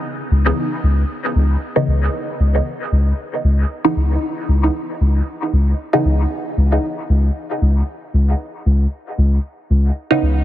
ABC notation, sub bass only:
X:1
M:4/4
L:1/8
Q:"Swing 16ths" 1/4=115
K:C#m
V:1 name="Sub bass" clef=bass
z C,, z C,, z C,, z C,, | z C,, z C,, z C,, z C,, | z C,, z C,, z C,, z C,, | z C,, z C,, z C,, z C,, |
z C,, z C,, z C,, z C,, |]